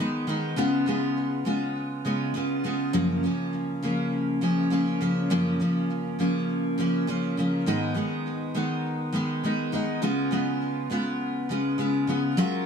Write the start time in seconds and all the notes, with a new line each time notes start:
Already playing: D#3
0.00 G#3 B3 D#4
0.27 D#3 G#3 B3 D#4
0.56 C#3 G#3 B3 F4
0.86 C#3 G#3 B3 F4
1.45 C#3 G#3 B3 F4
2.05 C#3 G#3 B3 F4
2.34 C#3 G#3 B3 F4
2.64 C#3 G#3 B3 F4
2.93 F#2 C#3 F3 A#3 C#4
3.23 C#3 F3 A#3 C#4
3.82 C#3 F3 A#3 C#4
4.41 C#3 F3 A#3 C#4
4.70 C#3 F3 A#3 C#4
5.01 C#3 F3 A#3 C#4
5.30 F#2 C#3 F3 A#3 C#4
5.60 C#3 F3 A#3 C#4
6.19 C#3 F3 A#3 C#4
6.78 C#3 F3 A#3 C#4
7.07 C#3 F3 A#3 C#4
7.37 C#3 F3 A#3 C#4
7.66 G#2 D#3 G#3 B3 D#4
7.94 D#3 G#3 B3 D#4
8.54 D#3 G#3 B3 D#4
9.13 D#3 G#3 B3 D#4
9.43 D#3 G#3 B3 D#4
9.72 D#3 G#3 B3 D#4
10.02 C#3 G#3 B3 F4
10.31 C#3 G#3 B3 F4
10.90 C#3 G#3 B3 F4
11.49 C#3 G#3 B3 F4
11.78 C#3 G#3 B3 F4
12.07 C#3 G#3 B3 F4
12.37 F#3 G#3 C#4 F4 A#4